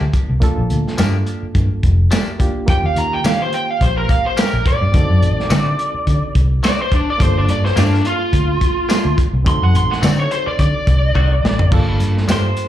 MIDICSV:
0, 0, Header, 1, 8, 480
1, 0, Start_track
1, 0, Key_signature, -2, "minor"
1, 0, Tempo, 564972
1, 355, Time_signature, 4, 2, 24, 8
1, 10774, End_track
2, 0, Start_track
2, 0, Title_t, "Lead electric guitar"
2, 0, Program_c, 0, 29
2, 2292, Note_on_c, 0, 79, 89
2, 2427, Note_off_c, 0, 79, 0
2, 2427, Note_on_c, 0, 77, 79
2, 2522, Note_off_c, 0, 77, 0
2, 2535, Note_on_c, 0, 82, 86
2, 2656, Note_off_c, 0, 82, 0
2, 2666, Note_on_c, 0, 79, 90
2, 2770, Note_off_c, 0, 79, 0
2, 2770, Note_on_c, 0, 77, 92
2, 2894, Note_off_c, 0, 77, 0
2, 2905, Note_on_c, 0, 72, 77
2, 3001, Note_off_c, 0, 72, 0
2, 3009, Note_on_c, 0, 79, 91
2, 3148, Note_off_c, 0, 79, 0
2, 3148, Note_on_c, 0, 77, 94
2, 3242, Note_off_c, 0, 77, 0
2, 3247, Note_on_c, 0, 72, 80
2, 3373, Note_off_c, 0, 72, 0
2, 3376, Note_on_c, 0, 70, 84
2, 3477, Note_off_c, 0, 70, 0
2, 3486, Note_on_c, 0, 77, 88
2, 3612, Note_off_c, 0, 77, 0
2, 3622, Note_on_c, 0, 72, 86
2, 3728, Note_off_c, 0, 72, 0
2, 3728, Note_on_c, 0, 70, 83
2, 3956, Note_off_c, 0, 70, 0
2, 3972, Note_on_c, 0, 74, 100
2, 5371, Note_off_c, 0, 74, 0
2, 5656, Note_on_c, 0, 74, 102
2, 5778, Note_off_c, 0, 74, 0
2, 5793, Note_on_c, 0, 72, 90
2, 5886, Note_off_c, 0, 72, 0
2, 5897, Note_on_c, 0, 62, 87
2, 6018, Note_off_c, 0, 62, 0
2, 6033, Note_on_c, 0, 74, 96
2, 6135, Note_off_c, 0, 74, 0
2, 6135, Note_on_c, 0, 72, 97
2, 6257, Note_off_c, 0, 72, 0
2, 6268, Note_on_c, 0, 62, 71
2, 6363, Note_off_c, 0, 62, 0
2, 6373, Note_on_c, 0, 74, 99
2, 6496, Note_off_c, 0, 74, 0
2, 6505, Note_on_c, 0, 72, 94
2, 6601, Note_off_c, 0, 72, 0
2, 6615, Note_on_c, 0, 62, 95
2, 6840, Note_off_c, 0, 62, 0
2, 6856, Note_on_c, 0, 65, 92
2, 7779, Note_off_c, 0, 65, 0
2, 8052, Note_on_c, 0, 84, 115
2, 8175, Note_off_c, 0, 84, 0
2, 8184, Note_on_c, 0, 78, 97
2, 8281, Note_off_c, 0, 78, 0
2, 8295, Note_on_c, 0, 84, 97
2, 8417, Note_off_c, 0, 84, 0
2, 8421, Note_on_c, 0, 78, 75
2, 8520, Note_off_c, 0, 78, 0
2, 8533, Note_on_c, 0, 74, 99
2, 8656, Note_off_c, 0, 74, 0
2, 8664, Note_on_c, 0, 73, 72
2, 8761, Note_off_c, 0, 73, 0
2, 8768, Note_on_c, 0, 72, 83
2, 8893, Note_off_c, 0, 72, 0
2, 8899, Note_on_c, 0, 74, 93
2, 8995, Note_off_c, 0, 74, 0
2, 9005, Note_on_c, 0, 74, 116
2, 9932, Note_off_c, 0, 74, 0
2, 10774, End_track
3, 0, Start_track
3, 0, Title_t, "Clean electric guitar"
3, 0, Program_c, 1, 27
3, 10460, Note_on_c, 1, 72, 99
3, 10774, Note_off_c, 1, 72, 0
3, 10774, End_track
4, 0, Start_track
4, 0, Title_t, "Reed electric piano"
4, 0, Program_c, 2, 4
4, 0, Note_on_c, 2, 58, 72
4, 0, Note_on_c, 2, 62, 67
4, 0, Note_on_c, 2, 65, 66
4, 0, Note_on_c, 2, 70, 72
4, 314, Note_off_c, 2, 58, 0
4, 320, Note_off_c, 2, 62, 0
4, 324, Note_off_c, 2, 65, 0
4, 329, Note_off_c, 2, 70, 0
4, 340, Note_on_c, 2, 58, 77
4, 351, Note_on_c, 2, 62, 67
4, 361, Note_on_c, 2, 65, 77
4, 369, Note_on_c, 2, 69, 93
4, 1995, Note_off_c, 2, 58, 0
4, 2001, Note_off_c, 2, 62, 0
4, 2006, Note_off_c, 2, 65, 0
4, 2010, Note_off_c, 2, 69, 0
4, 2026, Note_on_c, 2, 58, 59
4, 2033, Note_on_c, 2, 62, 62
4, 2038, Note_on_c, 2, 65, 61
4, 2043, Note_on_c, 2, 67, 75
4, 2252, Note_off_c, 2, 58, 0
4, 2262, Note_on_c, 2, 58, 66
4, 2271, Note_off_c, 2, 65, 0
4, 2271, Note_on_c, 2, 61, 60
4, 2275, Note_off_c, 2, 62, 0
4, 2280, Note_off_c, 2, 67, 0
4, 2282, Note_on_c, 2, 65, 60
4, 2292, Note_on_c, 2, 67, 72
4, 4157, Note_off_c, 2, 58, 0
4, 4161, Note_off_c, 2, 61, 0
4, 4166, Note_off_c, 2, 65, 0
4, 4171, Note_off_c, 2, 67, 0
4, 4181, Note_on_c, 2, 60, 73
4, 4193, Note_on_c, 2, 63, 66
4, 4202, Note_on_c, 2, 66, 63
4, 4212, Note_on_c, 2, 69, 74
4, 6076, Note_off_c, 2, 60, 0
4, 6082, Note_off_c, 2, 63, 0
4, 6086, Note_off_c, 2, 66, 0
4, 6091, Note_off_c, 2, 69, 0
4, 6100, Note_on_c, 2, 58, 73
4, 6110, Note_on_c, 2, 62, 62
4, 6120, Note_on_c, 2, 65, 64
4, 6131, Note_on_c, 2, 69, 75
4, 7995, Note_off_c, 2, 58, 0
4, 8000, Note_off_c, 2, 62, 0
4, 8005, Note_off_c, 2, 65, 0
4, 8011, Note_off_c, 2, 69, 0
4, 8024, Note_on_c, 2, 60, 73
4, 8032, Note_on_c, 2, 63, 69
4, 8042, Note_on_c, 2, 66, 67
4, 8054, Note_on_c, 2, 69, 77
4, 9917, Note_off_c, 2, 60, 0
4, 9921, Note_off_c, 2, 63, 0
4, 9926, Note_off_c, 2, 66, 0
4, 9932, Note_off_c, 2, 69, 0
4, 9943, Note_on_c, 2, 58, 79
4, 9952, Note_on_c, 2, 62, 66
4, 9961, Note_on_c, 2, 65, 80
4, 9971, Note_on_c, 2, 69, 96
4, 10774, Note_off_c, 2, 58, 0
4, 10774, Note_off_c, 2, 62, 0
4, 10774, Note_off_c, 2, 65, 0
4, 10774, Note_off_c, 2, 69, 0
4, 10774, End_track
5, 0, Start_track
5, 0, Title_t, "Clean electric guitar"
5, 0, Program_c, 3, 27
5, 830, Note_on_c, 3, 53, 76
5, 837, Note_on_c, 3, 58, 92
5, 839, Note_on_c, 3, 62, 87
5, 843, Note_on_c, 3, 67, 77
5, 988, Note_off_c, 3, 53, 0
5, 992, Note_off_c, 3, 58, 0
5, 993, Note_off_c, 3, 62, 0
5, 995, Note_off_c, 3, 67, 0
5, 1791, Note_on_c, 3, 53, 84
5, 1797, Note_on_c, 3, 58, 81
5, 1798, Note_on_c, 3, 62, 105
5, 1803, Note_on_c, 3, 67, 94
5, 1949, Note_off_c, 3, 53, 0
5, 1952, Note_off_c, 3, 58, 0
5, 1953, Note_off_c, 3, 62, 0
5, 1955, Note_off_c, 3, 67, 0
5, 2754, Note_on_c, 3, 58, 64
5, 2759, Note_on_c, 3, 61, 82
5, 2766, Note_on_c, 3, 67, 69
5, 2911, Note_off_c, 3, 58, 0
5, 2913, Note_off_c, 3, 61, 0
5, 2917, Note_off_c, 3, 67, 0
5, 3711, Note_on_c, 3, 58, 84
5, 3717, Note_on_c, 3, 61, 83
5, 3721, Note_on_c, 3, 67, 103
5, 3870, Note_off_c, 3, 58, 0
5, 3873, Note_off_c, 3, 61, 0
5, 3875, Note_off_c, 3, 67, 0
5, 4672, Note_on_c, 3, 51, 87
5, 4676, Note_on_c, 3, 57, 90
5, 4679, Note_on_c, 3, 60, 79
5, 4682, Note_on_c, 3, 66, 96
5, 4830, Note_off_c, 3, 51, 0
5, 4832, Note_off_c, 3, 57, 0
5, 4834, Note_off_c, 3, 60, 0
5, 4835, Note_off_c, 3, 66, 0
5, 5633, Note_on_c, 3, 51, 83
5, 5638, Note_on_c, 3, 57, 77
5, 5641, Note_on_c, 3, 60, 83
5, 5644, Note_on_c, 3, 66, 100
5, 5791, Note_off_c, 3, 51, 0
5, 5794, Note_off_c, 3, 57, 0
5, 5795, Note_off_c, 3, 60, 0
5, 5797, Note_off_c, 3, 66, 0
5, 6593, Note_on_c, 3, 58, 77
5, 6600, Note_on_c, 3, 62, 76
5, 6605, Note_on_c, 3, 65, 83
5, 6751, Note_off_c, 3, 58, 0
5, 6755, Note_off_c, 3, 62, 0
5, 6757, Note_off_c, 3, 65, 0
5, 7550, Note_on_c, 3, 58, 84
5, 7557, Note_on_c, 3, 62, 90
5, 7561, Note_on_c, 3, 65, 101
5, 7710, Note_off_c, 3, 58, 0
5, 7713, Note_off_c, 3, 62, 0
5, 7715, Note_off_c, 3, 65, 0
5, 8508, Note_on_c, 3, 51, 65
5, 8514, Note_on_c, 3, 57, 73
5, 8519, Note_on_c, 3, 60, 88
5, 8520, Note_on_c, 3, 66, 77
5, 8669, Note_off_c, 3, 51, 0
5, 8671, Note_off_c, 3, 57, 0
5, 8674, Note_off_c, 3, 60, 0
5, 8674, Note_off_c, 3, 66, 0
5, 9473, Note_on_c, 3, 51, 92
5, 9477, Note_on_c, 3, 57, 86
5, 9481, Note_on_c, 3, 60, 92
5, 9483, Note_on_c, 3, 66, 100
5, 9631, Note_off_c, 3, 51, 0
5, 9633, Note_off_c, 3, 57, 0
5, 9635, Note_off_c, 3, 60, 0
5, 9636, Note_off_c, 3, 66, 0
5, 10431, Note_on_c, 3, 53, 69
5, 10436, Note_on_c, 3, 58, 81
5, 10438, Note_on_c, 3, 62, 63
5, 10442, Note_on_c, 3, 67, 76
5, 10589, Note_off_c, 3, 53, 0
5, 10592, Note_off_c, 3, 58, 0
5, 10593, Note_off_c, 3, 62, 0
5, 10595, Note_off_c, 3, 67, 0
5, 10774, End_track
6, 0, Start_track
6, 0, Title_t, "Fingered electric bass"
6, 0, Program_c, 4, 33
6, 9, Note_on_c, 4, 38, 75
6, 95, Note_off_c, 4, 38, 0
6, 249, Note_on_c, 4, 36, 90
6, 336, Note_off_c, 4, 36, 0
6, 494, Note_on_c, 4, 34, 98
6, 578, Note_off_c, 4, 34, 0
6, 597, Note_on_c, 4, 38, 92
6, 706, Note_off_c, 4, 38, 0
6, 838, Note_on_c, 4, 43, 88
6, 1033, Note_off_c, 4, 43, 0
6, 1316, Note_on_c, 4, 43, 107
6, 1426, Note_off_c, 4, 43, 0
6, 1559, Note_on_c, 4, 29, 91
6, 1753, Note_off_c, 4, 29, 0
6, 2277, Note_on_c, 4, 39, 110
6, 2386, Note_off_c, 4, 39, 0
6, 2412, Note_on_c, 4, 39, 91
6, 2498, Note_off_c, 4, 39, 0
6, 2516, Note_on_c, 4, 51, 83
6, 2712, Note_off_c, 4, 51, 0
6, 2757, Note_on_c, 4, 51, 79
6, 2953, Note_off_c, 4, 51, 0
6, 3236, Note_on_c, 4, 34, 100
6, 3432, Note_off_c, 4, 34, 0
6, 3852, Note_on_c, 4, 34, 81
6, 3938, Note_off_c, 4, 34, 0
6, 4090, Note_on_c, 4, 43, 78
6, 4177, Note_off_c, 4, 43, 0
6, 4197, Note_on_c, 4, 38, 101
6, 4307, Note_off_c, 4, 38, 0
6, 4333, Note_on_c, 4, 42, 98
6, 4419, Note_off_c, 4, 42, 0
6, 4436, Note_on_c, 4, 33, 94
6, 4546, Note_off_c, 4, 33, 0
6, 4676, Note_on_c, 4, 50, 91
6, 4873, Note_off_c, 4, 50, 0
6, 5156, Note_on_c, 4, 50, 104
6, 5266, Note_off_c, 4, 50, 0
6, 5397, Note_on_c, 4, 36, 103
6, 5593, Note_off_c, 4, 36, 0
6, 6116, Note_on_c, 4, 31, 110
6, 6227, Note_off_c, 4, 31, 0
6, 6248, Note_on_c, 4, 31, 82
6, 6336, Note_off_c, 4, 31, 0
6, 6356, Note_on_c, 4, 43, 92
6, 6552, Note_off_c, 4, 43, 0
6, 6597, Note_on_c, 4, 43, 97
6, 6793, Note_off_c, 4, 43, 0
6, 7076, Note_on_c, 4, 38, 94
6, 7273, Note_off_c, 4, 38, 0
6, 7689, Note_on_c, 4, 38, 88
6, 7777, Note_off_c, 4, 38, 0
6, 7930, Note_on_c, 4, 36, 92
6, 8017, Note_off_c, 4, 36, 0
6, 8039, Note_on_c, 4, 38, 120
6, 8148, Note_off_c, 4, 38, 0
6, 8174, Note_on_c, 4, 42, 93
6, 8260, Note_off_c, 4, 42, 0
6, 8278, Note_on_c, 4, 33, 100
6, 8388, Note_off_c, 4, 33, 0
6, 8517, Note_on_c, 4, 50, 92
6, 8713, Note_off_c, 4, 50, 0
6, 8996, Note_on_c, 4, 50, 102
6, 9106, Note_off_c, 4, 50, 0
6, 9237, Note_on_c, 4, 36, 93
6, 9433, Note_off_c, 4, 36, 0
6, 9475, Note_on_c, 4, 36, 86
6, 9692, Note_off_c, 4, 36, 0
6, 9719, Note_on_c, 4, 33, 85
6, 9934, Note_off_c, 4, 33, 0
6, 9956, Note_on_c, 4, 31, 103
6, 10066, Note_off_c, 4, 31, 0
6, 10091, Note_on_c, 4, 31, 90
6, 10178, Note_off_c, 4, 31, 0
6, 10196, Note_on_c, 4, 43, 89
6, 10392, Note_off_c, 4, 43, 0
6, 10435, Note_on_c, 4, 43, 83
6, 10632, Note_off_c, 4, 43, 0
6, 10774, End_track
7, 0, Start_track
7, 0, Title_t, "Muted fingered electric bass strokes"
7, 1212, Note_on_c, 9, 29, 31
7, 1297, Note_off_c, 9, 29, 0
7, 5051, Note_on_c, 9, 29, 31
7, 5136, Note_off_c, 9, 29, 0
7, 8896, Note_on_c, 9, 29, 33
7, 8981, Note_off_c, 9, 29, 0
7, 10774, End_track
8, 0, Start_track
8, 0, Title_t, "Drums"
8, 115, Note_on_c, 9, 36, 76
8, 115, Note_on_c, 9, 42, 68
8, 200, Note_off_c, 9, 36, 0
8, 200, Note_off_c, 9, 42, 0
8, 355, Note_on_c, 9, 36, 107
8, 356, Note_on_c, 9, 42, 80
8, 440, Note_off_c, 9, 36, 0
8, 441, Note_off_c, 9, 42, 0
8, 595, Note_on_c, 9, 42, 57
8, 680, Note_off_c, 9, 42, 0
8, 744, Note_on_c, 9, 38, 34
8, 829, Note_off_c, 9, 38, 0
8, 833, Note_on_c, 9, 42, 81
8, 833, Note_on_c, 9, 54, 111
8, 846, Note_on_c, 9, 38, 107
8, 918, Note_off_c, 9, 42, 0
8, 918, Note_off_c, 9, 54, 0
8, 931, Note_off_c, 9, 38, 0
8, 1075, Note_on_c, 9, 42, 56
8, 1160, Note_off_c, 9, 42, 0
8, 1316, Note_on_c, 9, 42, 72
8, 1317, Note_on_c, 9, 36, 76
8, 1401, Note_off_c, 9, 36, 0
8, 1401, Note_off_c, 9, 42, 0
8, 1557, Note_on_c, 9, 36, 80
8, 1558, Note_on_c, 9, 42, 58
8, 1642, Note_off_c, 9, 36, 0
8, 1643, Note_off_c, 9, 42, 0
8, 1797, Note_on_c, 9, 42, 81
8, 1797, Note_on_c, 9, 54, 115
8, 1809, Note_on_c, 9, 38, 112
8, 1882, Note_off_c, 9, 42, 0
8, 1882, Note_off_c, 9, 54, 0
8, 1894, Note_off_c, 9, 38, 0
8, 2037, Note_on_c, 9, 36, 82
8, 2039, Note_on_c, 9, 42, 68
8, 2122, Note_off_c, 9, 36, 0
8, 2124, Note_off_c, 9, 42, 0
8, 2274, Note_on_c, 9, 42, 85
8, 2276, Note_on_c, 9, 36, 110
8, 2359, Note_off_c, 9, 42, 0
8, 2361, Note_off_c, 9, 36, 0
8, 2518, Note_on_c, 9, 42, 69
8, 2602, Note_off_c, 9, 42, 0
8, 2756, Note_on_c, 9, 42, 87
8, 2756, Note_on_c, 9, 54, 116
8, 2768, Note_on_c, 9, 38, 113
8, 2840, Note_off_c, 9, 42, 0
8, 2840, Note_off_c, 9, 54, 0
8, 2853, Note_off_c, 9, 38, 0
8, 2996, Note_on_c, 9, 42, 68
8, 3081, Note_off_c, 9, 42, 0
8, 3237, Note_on_c, 9, 36, 77
8, 3238, Note_on_c, 9, 42, 75
8, 3322, Note_off_c, 9, 36, 0
8, 3323, Note_off_c, 9, 42, 0
8, 3476, Note_on_c, 9, 36, 85
8, 3477, Note_on_c, 9, 42, 65
8, 3561, Note_off_c, 9, 36, 0
8, 3562, Note_off_c, 9, 42, 0
8, 3715, Note_on_c, 9, 42, 88
8, 3715, Note_on_c, 9, 54, 109
8, 3728, Note_on_c, 9, 38, 108
8, 3800, Note_off_c, 9, 42, 0
8, 3800, Note_off_c, 9, 54, 0
8, 3813, Note_off_c, 9, 38, 0
8, 3956, Note_on_c, 9, 36, 90
8, 3956, Note_on_c, 9, 42, 71
8, 4041, Note_off_c, 9, 36, 0
8, 4041, Note_off_c, 9, 42, 0
8, 4196, Note_on_c, 9, 36, 120
8, 4197, Note_on_c, 9, 42, 92
8, 4281, Note_off_c, 9, 36, 0
8, 4282, Note_off_c, 9, 42, 0
8, 4439, Note_on_c, 9, 42, 64
8, 4524, Note_off_c, 9, 42, 0
8, 4586, Note_on_c, 9, 38, 33
8, 4671, Note_off_c, 9, 38, 0
8, 4675, Note_on_c, 9, 42, 79
8, 4675, Note_on_c, 9, 54, 110
8, 4688, Note_on_c, 9, 38, 117
8, 4760, Note_off_c, 9, 42, 0
8, 4760, Note_off_c, 9, 54, 0
8, 4773, Note_off_c, 9, 38, 0
8, 4919, Note_on_c, 9, 42, 53
8, 5004, Note_off_c, 9, 42, 0
8, 5157, Note_on_c, 9, 36, 73
8, 5158, Note_on_c, 9, 42, 78
8, 5242, Note_off_c, 9, 36, 0
8, 5243, Note_off_c, 9, 42, 0
8, 5397, Note_on_c, 9, 36, 82
8, 5397, Note_on_c, 9, 42, 63
8, 5482, Note_off_c, 9, 36, 0
8, 5482, Note_off_c, 9, 42, 0
8, 5638, Note_on_c, 9, 42, 82
8, 5638, Note_on_c, 9, 54, 112
8, 5650, Note_on_c, 9, 38, 98
8, 5723, Note_off_c, 9, 42, 0
8, 5723, Note_off_c, 9, 54, 0
8, 5735, Note_off_c, 9, 38, 0
8, 5877, Note_on_c, 9, 36, 90
8, 5877, Note_on_c, 9, 42, 66
8, 5962, Note_off_c, 9, 36, 0
8, 5962, Note_off_c, 9, 42, 0
8, 6118, Note_on_c, 9, 36, 105
8, 6119, Note_on_c, 9, 42, 92
8, 6203, Note_off_c, 9, 36, 0
8, 6204, Note_off_c, 9, 42, 0
8, 6360, Note_on_c, 9, 42, 67
8, 6445, Note_off_c, 9, 42, 0
8, 6505, Note_on_c, 9, 38, 33
8, 6590, Note_off_c, 9, 38, 0
8, 6599, Note_on_c, 9, 42, 92
8, 6599, Note_on_c, 9, 54, 107
8, 6612, Note_on_c, 9, 38, 100
8, 6684, Note_off_c, 9, 42, 0
8, 6684, Note_off_c, 9, 54, 0
8, 6697, Note_off_c, 9, 38, 0
8, 6745, Note_on_c, 9, 38, 33
8, 6830, Note_off_c, 9, 38, 0
8, 6838, Note_on_c, 9, 42, 73
8, 6923, Note_off_c, 9, 42, 0
8, 7078, Note_on_c, 9, 36, 80
8, 7078, Note_on_c, 9, 42, 86
8, 7162, Note_off_c, 9, 36, 0
8, 7163, Note_off_c, 9, 42, 0
8, 7317, Note_on_c, 9, 36, 82
8, 7318, Note_on_c, 9, 42, 76
8, 7402, Note_off_c, 9, 36, 0
8, 7403, Note_off_c, 9, 42, 0
8, 7558, Note_on_c, 9, 42, 95
8, 7558, Note_on_c, 9, 54, 107
8, 7570, Note_on_c, 9, 38, 99
8, 7643, Note_off_c, 9, 42, 0
8, 7643, Note_off_c, 9, 54, 0
8, 7655, Note_off_c, 9, 38, 0
8, 7799, Note_on_c, 9, 36, 77
8, 7800, Note_on_c, 9, 42, 73
8, 7884, Note_off_c, 9, 36, 0
8, 7885, Note_off_c, 9, 42, 0
8, 8039, Note_on_c, 9, 36, 124
8, 8041, Note_on_c, 9, 42, 95
8, 8124, Note_off_c, 9, 36, 0
8, 8126, Note_off_c, 9, 42, 0
8, 8283, Note_on_c, 9, 42, 67
8, 8368, Note_off_c, 9, 42, 0
8, 8432, Note_on_c, 9, 38, 34
8, 8516, Note_off_c, 9, 38, 0
8, 8520, Note_on_c, 9, 42, 81
8, 8520, Note_on_c, 9, 54, 127
8, 8533, Note_on_c, 9, 38, 120
8, 8605, Note_off_c, 9, 42, 0
8, 8605, Note_off_c, 9, 54, 0
8, 8618, Note_off_c, 9, 38, 0
8, 8762, Note_on_c, 9, 42, 59
8, 8847, Note_off_c, 9, 42, 0
8, 8997, Note_on_c, 9, 36, 87
8, 8997, Note_on_c, 9, 42, 81
8, 9082, Note_off_c, 9, 36, 0
8, 9082, Note_off_c, 9, 42, 0
8, 9236, Note_on_c, 9, 42, 67
8, 9237, Note_on_c, 9, 36, 82
8, 9321, Note_off_c, 9, 42, 0
8, 9322, Note_off_c, 9, 36, 0
8, 9476, Note_on_c, 9, 36, 60
8, 9561, Note_off_c, 9, 36, 0
8, 9728, Note_on_c, 9, 38, 100
8, 9813, Note_off_c, 9, 38, 0
8, 9849, Note_on_c, 9, 43, 101
8, 9934, Note_off_c, 9, 43, 0
8, 9954, Note_on_c, 9, 49, 100
8, 9956, Note_on_c, 9, 36, 118
8, 10039, Note_off_c, 9, 49, 0
8, 10041, Note_off_c, 9, 36, 0
8, 10196, Note_on_c, 9, 42, 68
8, 10281, Note_off_c, 9, 42, 0
8, 10344, Note_on_c, 9, 38, 33
8, 10429, Note_off_c, 9, 38, 0
8, 10438, Note_on_c, 9, 42, 89
8, 10438, Note_on_c, 9, 54, 122
8, 10450, Note_on_c, 9, 38, 101
8, 10523, Note_off_c, 9, 42, 0
8, 10523, Note_off_c, 9, 54, 0
8, 10535, Note_off_c, 9, 38, 0
8, 10676, Note_on_c, 9, 42, 67
8, 10761, Note_off_c, 9, 42, 0
8, 10774, End_track
0, 0, End_of_file